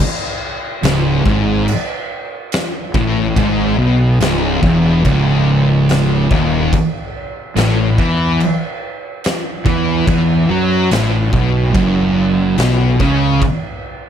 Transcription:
0.83 C#1 C#2, snare, crash
1.25 G#1 G#2, kick
1.68 crash
2.52 snare, crash
2.94 A1 A2, kick
3.37 G#1 G#2, kick, crash
3.79 B1 B2
4.20 C#1 C#2, snare, crash
4.62 E1 E2, kick
5.04 C#1 C#2, kick, crash
5.89 snare, crash
6.31 D#1 D#2, kick
6.73 kick, crash
7.56 A1 A2, snare, crash
7.98 E2 E3, kick
8.40 crash
9.24 snare, crash
9.65 E2 E3, kick
10.07 E2 E3, kick, crash
10.49 F#2 F#3
10.91 A1 A2, snare, crash
11.33 B1 B2, kick
11.75 F#1 F#2, kick, crash
12.58 B1 B2, snare, crash
13.00 C#2 C#3, kick
13.42 kick, crash

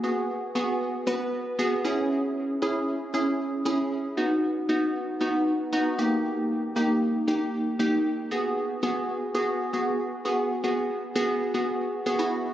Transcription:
0.03 B3 F#4 G#4
0.55 B3 F#4 G#4
1.07 B3 F#4 B4
1.59 B3 F#4 G#4
1.84 C#4 E4 G#4
2.62 C#4 E4 G#4
3.14 C#4 E4 G#4
3.65 C#4 E4 G#4
4.17 B3 D#4 F#4
4.69 B3 D#4 F#4
5.21 B3 D#4 F#4
5.72 B3 D#4 F#4
5.98 A#3 D#4 G4
6.76 A#3 D#4 G4
7.28 A#3 D#4 G4
7.79 A#3 D#4 G4
8.31 B3 F#4 G#4
8.83 B3 F#4 G#4
9.35 B3 F#4 G#4
9.73 B3 F#4 G#4
10.25 B3 F#4 G#4
10.64 B3 F#4 G#4
11.15 B3 F#4 G#4
11.54 B3 F#4 G#4
12.06 B3 F#4 G#4
12.19 B3 E4 F#4

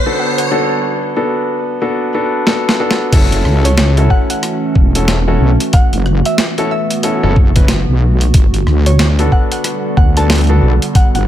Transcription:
Already playing: D3 G3 B3 F#4, riser
0.06 B3 D4 F#4 A4
0.20 F#5
0.38 F#5, closed hi-hat
0.51 B3 D4 F#4 A4
1.16 B3 D4 F#4 A4
1.82 B3 D4 F#4 A4
2.14 B3 D4 F#4 A4
2.47 B3 D4 F#4 A4, snare
2.69 snare
2.80 B3 D4 F#4 A4
2.91 snare
3.12 F#1 E3 A3 C#4 E4 F#4 A4, kick, closed hi-hat, crash
3.32 closed hi-hat
3.45 C#2, cross-stick
3.65 C#5, closed hi-hat
3.78 C#5, snare, closed hi-hat
3.97 C#4 E4 F#4 A4, closed hi-hat
4.10 F#5, kick
4.30 F#5, closed hi-hat
4.43 cross-stick, closed hi-hat
4.75 E1, kick
4.95 C#4 E4 F#4 A4, closed hi-hat
5.08 snare, closed hi-hat
5.28 C#4 E4 F#4 A4
5.40 B1
5.60 closed hi-hat
5.73 B3 F#5, kick, closed hi-hat
5.93 F#1, closed hi-hat
6.06 cross-stick
6.25 E5, closed hi-hat
6.38 snare, closed hi-hat
6.58 C#4 E4 F#4 A4, closed hi-hat
6.71 E5
6.91 closed hi-hat
7.03 C#4 E4 F#4 A4, closed hi-hat
7.23 F#1 C#4 E4 F#4 A4
7.36 kick
7.56 C#4 E4 F#4 B4, kick, closed hi-hat
7.68 snare, closed hi-hat
7.88 B1
8.21 closed hi-hat
8.34 G1 D3 G3 B3, kick, closed hi-hat
8.54 closed hi-hat
8.66 D2, cross-stick
8.86 C#5, closed hi-hat
8.99 C#5, snare, closed hi-hat
9.19 B3 D4 F#4 A4, closed hi-hat
9.32 F#5, kick
9.52 F#5, closed hi-hat
9.64 cross-stick, closed hi-hat
9.97 D2 F#5, kick
10.17 B3 D4 F#4 A4 A5, closed hi-hat
10.30 snare, closed hi-hat
10.33 closed hi-hat
10.35 closed hi-hat
10.38 closed hi-hat
10.41 closed hi-hat
10.44 closed hi-hat
10.47 B3 D4 F#4 A4, closed hi-hat
10.62 B1
10.82 closed hi-hat
10.95 F#5, kick, closed hi-hat
11.14 G1 F#5, closed hi-hat

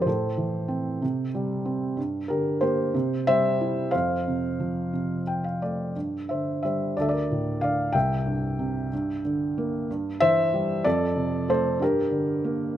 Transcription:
0.02 C5
0.06 A2 A4
0.38 E3
0.68 C4
1.02 C3
1.35 G3
1.65 C4
1.97 G2
2.28 D3 G4 A#4
2.61 A#3 G4 C5
2.94 C3
3.27 G3 C5 E5
3.61 E4
3.91 F2 C5 F5
4.28 C3
4.60 F3
4.93 C3
5.27 G5
5.44 F5
5.62 A3 D5
5.96 G2
6.29 D3 C5 E5
6.63 G3 C5 E5
6.97 D2 A4 D5
7.01 E5
7.09 A#4 D5
7.31 A2
7.61 D3 D5 F5
7.93 C2 E5 G5
8.26 G2
8.59 C3
8.93 G2
9.25 D3
9.58 A#3
9.91 G2
10.20 E3 C5 E5
10.54 G3
10.84 F2 A4 D5
11.16 C3
11.48 A3 A4 C5
11.79 G2 G4 A#4
12.11 D3
12.44 A#3

